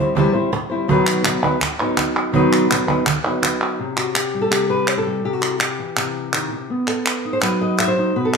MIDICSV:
0, 0, Header, 1, 5, 480
1, 0, Start_track
1, 0, Tempo, 363196
1, 1172, Time_signature, 4, 2, 24, 8
1, 11062, End_track
2, 0, Start_track
2, 0, Title_t, "Nylon-string guitar"
2, 0, Program_c, 0, 24
2, 0, Note_on_c, 0, 64, 50
2, 0, Note_on_c, 0, 72, 56
2, 3, Note_on_c, 0, 60, 55
2, 10, Note_on_c, 0, 55, 46
2, 200, Note_off_c, 0, 55, 0
2, 200, Note_on_c, 0, 48, 83
2, 210, Note_off_c, 0, 72, 0
2, 210, Note_on_c, 0, 52, 74
2, 211, Note_off_c, 0, 60, 0
2, 215, Note_off_c, 0, 64, 0
2, 216, Note_on_c, 0, 55, 85
2, 227, Note_on_c, 0, 60, 78
2, 229, Note_on_c, 0, 64, 85
2, 232, Note_on_c, 0, 72, 86
2, 424, Note_off_c, 0, 72, 0
2, 436, Note_off_c, 0, 64, 0
2, 438, Note_off_c, 0, 48, 0
2, 439, Note_on_c, 0, 72, 62
2, 443, Note_off_c, 0, 52, 0
2, 446, Note_off_c, 0, 55, 0
2, 451, Note_off_c, 0, 60, 0
2, 451, Note_on_c, 0, 64, 55
2, 465, Note_on_c, 0, 55, 49
2, 466, Note_on_c, 0, 60, 57
2, 677, Note_off_c, 0, 72, 0
2, 679, Note_off_c, 0, 55, 0
2, 679, Note_off_c, 0, 60, 0
2, 683, Note_off_c, 0, 64, 0
2, 920, Note_on_c, 0, 72, 59
2, 941, Note_on_c, 0, 64, 59
2, 946, Note_on_c, 0, 60, 50
2, 960, Note_on_c, 0, 55, 43
2, 1156, Note_off_c, 0, 72, 0
2, 1165, Note_on_c, 0, 47, 83
2, 1166, Note_off_c, 0, 64, 0
2, 1169, Note_off_c, 0, 60, 0
2, 1175, Note_on_c, 0, 51, 84
2, 1176, Note_off_c, 0, 55, 0
2, 1183, Note_on_c, 0, 54, 89
2, 1183, Note_on_c, 0, 59, 82
2, 1190, Note_on_c, 0, 63, 87
2, 1198, Note_on_c, 0, 71, 90
2, 1627, Note_off_c, 0, 54, 0
2, 1637, Note_off_c, 0, 47, 0
2, 1639, Note_off_c, 0, 59, 0
2, 1642, Note_off_c, 0, 51, 0
2, 1643, Note_on_c, 0, 54, 59
2, 1649, Note_off_c, 0, 63, 0
2, 1653, Note_off_c, 0, 71, 0
2, 1655, Note_on_c, 0, 59, 50
2, 1669, Note_on_c, 0, 63, 56
2, 1680, Note_on_c, 0, 71, 53
2, 1876, Note_off_c, 0, 54, 0
2, 1878, Note_off_c, 0, 71, 0
2, 1882, Note_off_c, 0, 59, 0
2, 1889, Note_off_c, 0, 63, 0
2, 1894, Note_on_c, 0, 71, 61
2, 1905, Note_on_c, 0, 63, 59
2, 1912, Note_on_c, 0, 59, 50
2, 1919, Note_on_c, 0, 54, 43
2, 2111, Note_off_c, 0, 54, 0
2, 2111, Note_off_c, 0, 63, 0
2, 2113, Note_off_c, 0, 59, 0
2, 2121, Note_off_c, 0, 71, 0
2, 2371, Note_on_c, 0, 71, 58
2, 2388, Note_on_c, 0, 63, 62
2, 2400, Note_on_c, 0, 59, 52
2, 2412, Note_on_c, 0, 54, 55
2, 3074, Note_off_c, 0, 54, 0
2, 3074, Note_on_c, 0, 47, 83
2, 3077, Note_off_c, 0, 71, 0
2, 3079, Note_off_c, 0, 59, 0
2, 3085, Note_off_c, 0, 63, 0
2, 3085, Note_on_c, 0, 51, 81
2, 3090, Note_on_c, 0, 54, 88
2, 3095, Note_on_c, 0, 59, 80
2, 3102, Note_on_c, 0, 63, 91
2, 3110, Note_on_c, 0, 71, 89
2, 3539, Note_off_c, 0, 54, 0
2, 3548, Note_off_c, 0, 47, 0
2, 3552, Note_off_c, 0, 59, 0
2, 3554, Note_off_c, 0, 51, 0
2, 3555, Note_on_c, 0, 54, 50
2, 3562, Note_off_c, 0, 63, 0
2, 3566, Note_off_c, 0, 71, 0
2, 3568, Note_on_c, 0, 59, 54
2, 3577, Note_on_c, 0, 63, 56
2, 3589, Note_on_c, 0, 71, 60
2, 3779, Note_off_c, 0, 71, 0
2, 3789, Note_off_c, 0, 54, 0
2, 3795, Note_off_c, 0, 59, 0
2, 3795, Note_on_c, 0, 71, 63
2, 3797, Note_off_c, 0, 63, 0
2, 3813, Note_on_c, 0, 63, 52
2, 3824, Note_on_c, 0, 59, 55
2, 3829, Note_on_c, 0, 54, 47
2, 4029, Note_off_c, 0, 71, 0
2, 4034, Note_off_c, 0, 54, 0
2, 4035, Note_off_c, 0, 59, 0
2, 4037, Note_off_c, 0, 63, 0
2, 4280, Note_on_c, 0, 71, 59
2, 4298, Note_on_c, 0, 63, 53
2, 4308, Note_on_c, 0, 59, 57
2, 4312, Note_on_c, 0, 54, 54
2, 4991, Note_off_c, 0, 71, 0
2, 4999, Note_off_c, 0, 63, 0
2, 5005, Note_off_c, 0, 59, 0
2, 5007, Note_off_c, 0, 54, 0
2, 5017, Note_on_c, 0, 48, 68
2, 5248, Note_on_c, 0, 66, 81
2, 5473, Note_off_c, 0, 66, 0
2, 5478, Note_on_c, 0, 67, 80
2, 5739, Note_on_c, 0, 55, 54
2, 5835, Note_on_c, 0, 69, 94
2, 5942, Note_off_c, 0, 67, 0
2, 5951, Note_off_c, 0, 48, 0
2, 5956, Note_on_c, 0, 48, 63
2, 5963, Note_on_c, 0, 67, 91
2, 6199, Note_off_c, 0, 69, 0
2, 6211, Note_on_c, 0, 71, 84
2, 6454, Note_off_c, 0, 71, 0
2, 6454, Note_on_c, 0, 72, 105
2, 6568, Note_off_c, 0, 72, 0
2, 6578, Note_on_c, 0, 69, 97
2, 6681, Note_off_c, 0, 67, 0
2, 6684, Note_off_c, 0, 55, 0
2, 6700, Note_on_c, 0, 55, 62
2, 6893, Note_off_c, 0, 48, 0
2, 6903, Note_off_c, 0, 55, 0
2, 6932, Note_on_c, 0, 48, 75
2, 6940, Note_on_c, 0, 67, 92
2, 7045, Note_off_c, 0, 67, 0
2, 7045, Note_on_c, 0, 66, 91
2, 7177, Note_on_c, 0, 64, 43
2, 7391, Note_off_c, 0, 66, 0
2, 7396, Note_on_c, 0, 67, 69
2, 7413, Note_off_c, 0, 69, 0
2, 7646, Note_on_c, 0, 52, 52
2, 7650, Note_off_c, 0, 48, 0
2, 7886, Note_on_c, 0, 48, 56
2, 8364, Note_off_c, 0, 52, 0
2, 8364, Note_off_c, 0, 67, 0
2, 8369, Note_on_c, 0, 51, 69
2, 8601, Note_off_c, 0, 48, 0
2, 8610, Note_off_c, 0, 51, 0
2, 8617, Note_on_c, 0, 48, 55
2, 8827, Note_off_c, 0, 64, 0
2, 8854, Note_off_c, 0, 48, 0
2, 8855, Note_on_c, 0, 59, 69
2, 9086, Note_on_c, 0, 69, 83
2, 9328, Note_on_c, 0, 71, 79
2, 9585, Note_on_c, 0, 63, 48
2, 9682, Note_off_c, 0, 71, 0
2, 9687, Note_on_c, 0, 72, 96
2, 9809, Note_off_c, 0, 72, 0
2, 9811, Note_off_c, 0, 69, 0
2, 9813, Note_on_c, 0, 54, 59
2, 9815, Note_on_c, 0, 71, 100
2, 10064, Note_on_c, 0, 75, 98
2, 10296, Note_off_c, 0, 75, 0
2, 10301, Note_on_c, 0, 76, 116
2, 10408, Note_off_c, 0, 71, 0
2, 10413, Note_on_c, 0, 72, 94
2, 10419, Note_off_c, 0, 76, 0
2, 10533, Note_off_c, 0, 63, 0
2, 10549, Note_on_c, 0, 63, 62
2, 10749, Note_off_c, 0, 54, 0
2, 10751, Note_off_c, 0, 59, 0
2, 10755, Note_off_c, 0, 63, 0
2, 10776, Note_off_c, 0, 72, 0
2, 10780, Note_on_c, 0, 47, 69
2, 10786, Note_on_c, 0, 71, 89
2, 10904, Note_on_c, 0, 69, 96
2, 11062, Note_off_c, 0, 47, 0
2, 11062, Note_off_c, 0, 69, 0
2, 11062, Note_off_c, 0, 71, 0
2, 11062, End_track
3, 0, Start_track
3, 0, Title_t, "Cajon"
3, 219, Note_on_c, 9, 36, 109
3, 352, Note_off_c, 9, 36, 0
3, 698, Note_on_c, 9, 38, 111
3, 831, Note_off_c, 9, 38, 0
3, 941, Note_on_c, 9, 38, 32
3, 1073, Note_off_c, 9, 38, 0
3, 1177, Note_on_c, 9, 36, 105
3, 1309, Note_off_c, 9, 36, 0
3, 1661, Note_on_c, 9, 38, 99
3, 1793, Note_off_c, 9, 38, 0
3, 1897, Note_on_c, 9, 36, 75
3, 2029, Note_off_c, 9, 36, 0
3, 2133, Note_on_c, 9, 36, 104
3, 2133, Note_on_c, 9, 38, 33
3, 2265, Note_off_c, 9, 36, 0
3, 2265, Note_off_c, 9, 38, 0
3, 2377, Note_on_c, 9, 38, 27
3, 2509, Note_off_c, 9, 38, 0
3, 2608, Note_on_c, 9, 36, 63
3, 2608, Note_on_c, 9, 38, 102
3, 2740, Note_off_c, 9, 36, 0
3, 2740, Note_off_c, 9, 38, 0
3, 2859, Note_on_c, 9, 38, 28
3, 2992, Note_off_c, 9, 38, 0
3, 3088, Note_on_c, 9, 36, 101
3, 3220, Note_off_c, 9, 36, 0
3, 3577, Note_on_c, 9, 38, 102
3, 3709, Note_off_c, 9, 38, 0
3, 3812, Note_on_c, 9, 36, 77
3, 3944, Note_off_c, 9, 36, 0
3, 4053, Note_on_c, 9, 36, 111
3, 4185, Note_off_c, 9, 36, 0
3, 4303, Note_on_c, 9, 38, 29
3, 4435, Note_off_c, 9, 38, 0
3, 4529, Note_on_c, 9, 38, 102
3, 4661, Note_off_c, 9, 38, 0
3, 4778, Note_on_c, 9, 38, 30
3, 4910, Note_off_c, 9, 38, 0
3, 11062, End_track
4, 0, Start_track
4, 0, Title_t, "Muted nylon-string guitar strokes"
4, 690, Note_on_c, 9, 29, 75
4, 822, Note_off_c, 9, 29, 0
4, 2120, Note_on_c, 9, 29, 63
4, 2252, Note_off_c, 9, 29, 0
4, 4037, Note_on_c, 9, 29, 66
4, 4169, Note_off_c, 9, 29, 0
4, 11062, End_track
5, 0, Start_track
5, 0, Title_t, "Drums"
5, 1411, Note_on_c, 9, 39, 85
5, 1543, Note_off_c, 9, 39, 0
5, 1650, Note_on_c, 9, 39, 91
5, 1782, Note_off_c, 9, 39, 0
5, 1894, Note_on_c, 9, 39, 45
5, 2026, Note_off_c, 9, 39, 0
5, 2132, Note_on_c, 9, 39, 90
5, 2264, Note_off_c, 9, 39, 0
5, 2611, Note_on_c, 9, 39, 81
5, 2743, Note_off_c, 9, 39, 0
5, 2855, Note_on_c, 9, 39, 56
5, 2987, Note_off_c, 9, 39, 0
5, 3337, Note_on_c, 9, 39, 75
5, 3469, Note_off_c, 9, 39, 0
5, 3579, Note_on_c, 9, 39, 87
5, 3711, Note_off_c, 9, 39, 0
5, 3815, Note_on_c, 9, 39, 49
5, 3948, Note_off_c, 9, 39, 0
5, 4050, Note_on_c, 9, 39, 99
5, 4182, Note_off_c, 9, 39, 0
5, 4292, Note_on_c, 9, 39, 44
5, 4425, Note_off_c, 9, 39, 0
5, 4535, Note_on_c, 9, 39, 90
5, 4667, Note_off_c, 9, 39, 0
5, 5248, Note_on_c, 9, 39, 81
5, 5381, Note_off_c, 9, 39, 0
5, 5492, Note_on_c, 9, 39, 83
5, 5624, Note_off_c, 9, 39, 0
5, 5975, Note_on_c, 9, 39, 89
5, 6107, Note_off_c, 9, 39, 0
5, 6442, Note_on_c, 9, 39, 82
5, 6574, Note_off_c, 9, 39, 0
5, 7167, Note_on_c, 9, 39, 77
5, 7299, Note_off_c, 9, 39, 0
5, 7405, Note_on_c, 9, 39, 94
5, 7537, Note_off_c, 9, 39, 0
5, 7889, Note_on_c, 9, 39, 87
5, 8021, Note_off_c, 9, 39, 0
5, 8365, Note_on_c, 9, 39, 84
5, 8497, Note_off_c, 9, 39, 0
5, 9084, Note_on_c, 9, 39, 76
5, 9216, Note_off_c, 9, 39, 0
5, 9327, Note_on_c, 9, 39, 83
5, 9459, Note_off_c, 9, 39, 0
5, 9806, Note_on_c, 9, 39, 82
5, 9938, Note_off_c, 9, 39, 0
5, 10291, Note_on_c, 9, 39, 79
5, 10423, Note_off_c, 9, 39, 0
5, 11020, Note_on_c, 9, 39, 72
5, 11062, Note_off_c, 9, 39, 0
5, 11062, End_track
0, 0, End_of_file